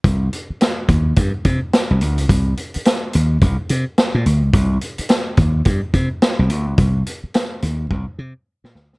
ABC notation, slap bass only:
X:1
M:4/4
L:1/16
Q:"Swing 16ths" 1/4=107
K:Cm
V:1 name="Slap bass" clef=bass
C,,2 z4 E,,2 G,, z C, z2 C,, D,, _D,, | C,,2 z4 E,,2 C,, z C, z2 B,, D,, _D,, | C,,2 z4 E,,2 G,, z C, z2 C,, D,, _D,, | C,,2 z4 E,,2 C,, z C, z2 B,, D,, _D,, |]